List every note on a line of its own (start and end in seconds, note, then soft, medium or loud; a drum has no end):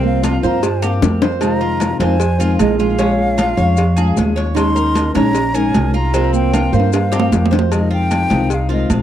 0.00 0.38 C2 loud
0.00 0.43 C3 medium
0.00 0.44 F3 medium
0.00 0.42 A#3 medium
0.00 0.40 A#3 medium
0.00 0.23 C4 medium
0.00 0.43 C4 medium
0.00 0.42 F4 medium
0.05 0.42 F5 medium
0.05 high conga soft
0.23 0.43 F4 medium
0.23 cowbell medium
0.23 high conga loud
0.23 low timbale medium
0.23 low agogo loud
0.23 maracas medium
0.42 0.99 G2 loud
0.42 0.62 F3 medium
0.42 0.62 A#3 medium
0.42 0.62 C4 medium
0.42 0.62 F4 medium
0.42 0.82 C5 medium
0.42 0.93 A#5 medium
0.42 maracas soft
0.62 muted steel-string acoustic guitar stroke medium
0.62 cowbell loud
0.62 high bongo medium
0.62 high conga soft
0.62 low agogo medium
0.62 maracas medium
0.82 1.01 F3 medium
0.82 1.02 A#3 medium
0.82 1.02 C4 medium
0.82 1.01 F4 medium
0.82 1.21 G4 medium
0.82 high bongo medium
0.82 high conga soft
0.82 low agogo medium
0.82 maracas medium
1.02 1.95 F2 loud
1.02 1.41 F3 medium
1.02 1.41 A#3 medium
1.02 1.42 C4 medium
1.02 1.42 F4 medium
1.02 cowbell medium
1.02 low bongo loud
1.02 high conga medium
1.02 low timbale medium
1.02 maracas medium
1.22 1.60 C5 medium
1.22 cowbell medium
1.22 low bongo loud
1.22 high conga soft
1.22 maracas soft
1.41 2.00 C3 medium
1.41 2.00 D#3 medium
1.41 2.00 G#3 medium
1.41 1.99 C4 medium
1.41 1.97 D#4 medium
1.41 1.99 F4 medium
1.41 1.97 A#5 medium
1.41 cowbell loud
1.41 high conga soft
1.41 low agogo loud
1.41 maracas medium
1.61 1.99 F4 medium
1.61 high conga soft
1.80 cowbell medium
1.80 high conga loud
1.80 low timbale medium
1.80 low agogo loud
1.80 maracas medium
2.00 2.55 F2 loud
2.00 2.18 D#3 medium
2.00 2.18 G#3 medium
2.00 2.18 C4 medium
2.00 2.18 F4 medium
2.00 2.39 C5 medium
2.00 2.56 G#5 loud
2.00 cowbell medium
2.00 high conga loud
2.00 low agogo medium
2.00 maracas soft
2.19 muted steel-string acoustic guitar stroke medium
2.19 cowbell loud
2.19 high conga soft
2.19 maracas medium
2.39 2.58 D#3 medium
2.39 2.59 G#3 medium
2.39 2.59 C4 medium
2.39 2.58 F4 medium
2.39 2.78 F4 medium
2.39 high conga soft
2.39 low agogo medium
2.39 maracas medium
2.59 3.52 A#1 loud
2.59 2.98 D#3 soft
2.59 2.98 G#3 medium
2.59 2.99 C4 medium
2.59 2.79 D#5 medium
2.59 cowbell medium
2.59 high conga medium
2.59 low timbale medium
2.59 low agogo loud
2.59 maracas medium
2.79 4.33 G#3 medium
2.79 2.99 F4 medium
2.79 4.33 F5 loud
2.79 high conga soft
2.79 maracas soft
2.98 3.57 F3 medium
2.98 3.59 G#3 medium
2.98 3.37 C#4 medium
2.98 3.58 C#4 medium
2.98 3.56 F4 medium
2.98 cowbell loud
2.98 high conga soft
2.98 low agogo medium
2.98 maracas medium
3.19 high conga soft
3.38 3.57 F4 medium
3.38 cowbell medium
3.38 high conga loud
3.38 low timbale medium
3.38 low agogo loud
3.38 maracas medium
3.57 4.13 F2 loud
3.57 3.77 G#3 medium
3.57 3.77 C#4 medium
3.57 3.77 F4 medium
3.57 3.96 C#5 medium
3.57 maracas soft
3.77 muted steel-string acoustic guitar stroke medium
3.77 cowbell loud
3.77 high conga soft
3.77 low agogo medium
3.77 maracas medium
3.96 4.16 G#3 medium
3.96 4.17 C#4 medium
3.96 4.16 F4 medium
3.96 4.35 G#4 medium
3.96 high conga soft
3.96 low agogo loud
3.96 maracas medium
4.16 5.10 D#2 loud
4.16 4.56 F3 medium
4.16 4.55 G#3 soft
4.16 4.56 C#4 medium
4.16 4.57 F4 medium
4.16 cowbell medium
4.16 high conga medium
4.16 low timbale medium
4.16 maracas medium
4.36 4.75 C#5 medium
4.36 cowbell medium
4.36 high conga soft
4.36 maracas soft
4.55 5.14 D#3 medium
4.55 5.15 G#3 medium
4.55 5.15 C#4 medium
4.55 5.14 D#4 medium
4.55 5.13 G#4 medium
4.55 5.11 C6 loud
4.55 cowbell loud
4.55 high conga soft
4.55 low agogo loud
4.55 maracas medium
4.76 5.14 A#4 medium
4.76 high conga soft
4.76 maracas medium
4.95 cowbell medium
4.95 high conga loud
4.95 low timbale medium
4.95 low agogo loud
4.95 maracas medium
5.14 5.71 A#1 loud
5.14 5.32 G#3 medium
5.14 5.33 C#4 medium
5.14 5.32 D#4 medium
5.14 5.33 G#4 medium
5.14 5.54 C#5 medium
5.14 5.57 A#5 loud
5.14 cowbell medium
5.14 high conga loud
5.14 low agogo medium
5.14 maracas soft
5.33 muted steel-string acoustic guitar stroke medium
5.33 cowbell loud
5.33 high conga soft
5.33 maracas medium
5.54 5.72 G#3 medium
5.54 5.73 C#4 medium
5.54 5.73 D#4 medium
5.54 5.74 G#4 medium
5.54 5.93 A#4 medium
5.54 5.95 G#5 loud
5.54 high conga soft
5.54 low agogo medium
5.54 maracas medium
5.73 6.67 C2 loud
5.73 6.13 G#3 soft
5.73 6.13 C#4 soft
5.73 6.13 D#4 medium
5.73 6.14 G#4 medium
5.73 cowbell medium
5.73 high conga medium
5.73 low timbale medium
5.73 low agogo loud
5.73 maracas medium
5.94 6.31 F4 medium
5.94 6.13 F4 medium
5.94 6.32 A#5 loud
5.94 high conga soft
5.94 maracas soft
6.13 6.72 C3 medium
6.13 6.72 F3 medium
6.13 6.73 A#3 medium
6.13 6.52 C4 loud
6.13 6.73 C4 medium
6.13 6.72 F4 medium
6.13 cowbell loud
6.13 high conga soft
6.13 low agogo medium
6.13 maracas medium
6.33 6.70 A#3 medium
6.33 6.76 G5 loud
6.33 high conga soft
6.33 maracas medium
6.53 6.73 F4 medium
6.53 cowbell medium
6.53 high conga medium
6.53 high timbale medium
6.53 low agogo loud
6.53 maracas medium
6.73 7.28 G2 loud
6.73 6.91 F3 medium
6.73 6.92 A#3 medium
6.73 6.92 C4 medium
6.73 6.92 F4 medium
6.73 7.11 C5 medium
6.73 7.53 F5 medium
6.73 maracas soft
6.80 high timbale medium
6.92 muted steel-string acoustic guitar stroke medium
6.92 cowbell loud
6.92 high conga soft
6.92 high timbale loud
6.92 low agogo medium
6.92 maracas medium
7.12 7.31 F3 medium
7.12 7.32 A#3 medium
7.12 7.32 C4 medium
7.12 7.31 F4 medium
7.12 7.50 G4 medium
7.12 high bongo medium
7.12 high conga soft
7.12 low agogo loud
7.12 maracas medium
7.20 low timbale loud
7.32 8.25 F2 loud
7.32 7.71 F3 soft
7.32 7.71 A#3 medium
7.32 7.72 C4 soft
7.32 7.72 F4 medium
7.32 cowbell medium
7.32 high bongo medium
7.32 high conga medium
7.32 low timbale medium
7.32 maracas medium
7.46 low timbale medium
7.51 7.71 C5 medium
7.51 cowbell medium
7.51 low bongo medium
7.51 high conga soft
7.51 maracas soft
7.59 low timbale loud
7.71 8.30 C3 medium
7.71 8.30 D#3 medium
7.71 8.31 G#3 medium
7.71 8.29 C4 medium
7.71 8.30 F4 medium
7.71 7.91 D#5 medium
7.71 cowbell loud
7.71 high conga soft
7.71 low agogo loud
7.71 maracas medium
7.91 8.29 F4 medium
7.91 8.56 G5 loud
7.91 high conga soft
8.11 cowbell medium
8.11 high conga medium
8.11 low timbale medium
8.11 low agogo loud
8.11 maracas medium
8.30 8.86 C2 loud
8.30 8.50 D#3 medium
8.30 8.50 G#3 medium
8.30 8.50 C4 medium
8.30 8.68 D#4 medium
8.30 8.49 F4 medium
8.30 cowbell medium
8.30 high conga medium
8.30 low agogo medium
8.30 maracas soft
8.50 muted steel-string acoustic guitar stroke medium
8.50 cowbell loud
8.50 high conga soft
8.50 maracas medium
8.54 8.71 F5 medium
8.69 8.88 D#3 medium
8.69 8.89 G#3 medium
8.69 8.89 C4 medium
8.69 9.02 F4 medium
8.69 8.89 F4 medium
8.69 8.89 D#5 medium
8.69 high conga soft
8.69 low agogo medium
8.89 9.02 A#1 loud
8.89 9.02 D#3 soft
8.89 9.02 G#3 medium
8.89 9.02 C4 medium
8.89 9.02 F4 medium
8.89 cowbell medium
8.89 high conga medium
8.89 low timbale medium
8.89 low agogo loud
8.89 maracas medium